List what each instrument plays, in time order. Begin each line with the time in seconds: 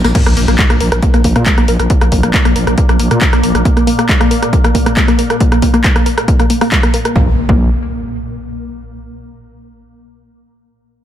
0.04 fm bass A#1, synth arpeggio sound A#3, cross-stick, closed hi-hat, tambourine
0.15 synth drone A#2 A#3, synth arpeggio sound A#3, kick, closed hi-hat, crash, impact
0.26 fm bass A#1, synth arpeggio sound A#3, cross-stick, closed hi-hat
0.37 fm bass A#1, synth arpeggio sound A#3, open hi-hat
0.48 fm bass A#1, synth arpeggio sound A#3, cross-stick, closed hi-hat
0.59 synth arpeggio sound G#3, kick, clap, closed hi-hat
0.70 fm bass A#1, synth arpeggio sound A#3, cross-stick, closed hi-hat
0.80 fm bass A#1, synth arpeggio sound A#4, open hi-hat
0.92 fm bass A#1, synth arpeggio sound A#4, cross-stick, closed hi-hat
1.02 synth arpeggio sound A#3, kick, closed hi-hat
1.14 fm bass A#1, synth arpeggio sound A#3, cross-stick, closed hi-hat
1.24 fm bass A#1, synth arpeggio sound A#3, kick, open hi-hat
1.36 fm bass A#2, synth arpeggio sound A#3, cross-stick, closed hi-hat
1.46 synth arpeggio sound G#3, kick, clap, closed hi-hat
1.58 fm bass A#1, synth arpeggio sound A#3, cross-stick, closed hi-hat
1.68 fm bass A#1, synth arpeggio sound A#4, open hi-hat
1.79 fm bass A#1, synth arpeggio sound A#4, cross-stick, closed hi-hat
1.90 synth arpeggio sound A#3, kick, closed hi-hat
2.01 fm bass A#1, synth arpeggio sound A#3, cross-stick, closed hi-hat
2.12 fm bass A#1, synth arpeggio sound A#3, kick, open hi-hat
2.23 fm bass A#1, synth arpeggio sound A#3, cross-stick, closed hi-hat
2.34 synth arpeggio sound G#3, kick, clap, closed hi-hat
2.45 fm bass A#1, synth arpeggio sound A#3, cross-stick, closed hi-hat
2.56 fm bass A#1, synth arpeggio sound A#4, open hi-hat
2.67 fm bass A#1, synth arpeggio sound A#4, cross-stick, closed hi-hat
2.78 synth arpeggio sound A#3, kick, closed hi-hat
2.89 fm bass A#1, synth arpeggio sound A#3, cross-stick, closed hi-hat
3.00 fm bass A#1, synth arpeggio sound A#3, open hi-hat
3.11 fm bass A#2, synth arpeggio sound A#3, cross-stick, closed hi-hat
3.21 synth arpeggio sound G#3, kick, clap, closed hi-hat
3.33 fm bass A#1, synth arpeggio sound A#3, cross-stick, closed hi-hat
3.43 fm bass A#1, synth arpeggio sound A#4, open hi-hat
3.55 fm bass A#1, synth arpeggio sound A#4, cross-stick, closed hi-hat
3.65 synth arpeggio sound A#3, kick, closed hi-hat
3.77 synth arpeggio sound A#3, cross-stick, closed hi-hat
3.87 synth arpeggio sound A#3, open hi-hat
3.98 synth arpeggio sound A#3, cross-stick, closed hi-hat
4.09 synth arpeggio sound G#3, kick, clap, closed hi-hat
4.20 synth arpeggio sound A#3, cross-stick, closed hi-hat
4.31 synth arpeggio sound A#4, open hi-hat
4.42 synth arpeggio sound A#4, cross-stick, closed hi-hat
4.53 synth arpeggio sound A#3, kick, closed hi-hat
4.64 synth arpeggio sound A#3, cross-stick, closed hi-hat
4.75 synth arpeggio sound A#3, kick, open hi-hat
4.86 synth arpeggio sound A#3, cross-stick, closed hi-hat
4.97 synth arpeggio sound G#3, kick, clap, closed hi-hat
5.08 synth arpeggio sound A#3, cross-stick, closed hi-hat
5.19 synth arpeggio sound A#4, open hi-hat
5.30 synth arpeggio sound A#4, cross-stick, closed hi-hat
5.40 synth arpeggio sound A#3, kick, closed hi-hat
5.52 synth arpeggio sound A#3, cross-stick, closed hi-hat
5.62 synth arpeggio sound A#3, kick, open hi-hat
5.74 synth arpeggio sound A#3, cross-stick, closed hi-hat
5.84 synth arpeggio sound G#3, kick, clap, closed hi-hat
5.95 synth arpeggio sound A#3, cross-stick, closed hi-hat
6.06 synth arpeggio sound A#4, open hi-hat
6.17 synth arpeggio sound A#4, cross-stick, closed hi-hat
6.28 synth arpeggio sound A#3, kick, closed hi-hat
6.39 synth arpeggio sound A#3, cross-stick, closed hi-hat
6.50 synth arpeggio sound A#3, open hi-hat
6.61 synth arpeggio sound A#3, cross-stick, open hi-hat
6.72 synth arpeggio sound G#3, kick, clap, closed hi-hat
6.83 synth arpeggio sound A#3, cross-stick, closed hi-hat
6.94 synth arpeggio sound A#4, open hi-hat
7.05 synth arpeggio sound A#4, cross-stick, closed hi-hat
7.16 fm bass A#1, synth arpeggio sound A#3, kick, impact
7.49 fm bass A#1, synth arpeggio sound A#3, kick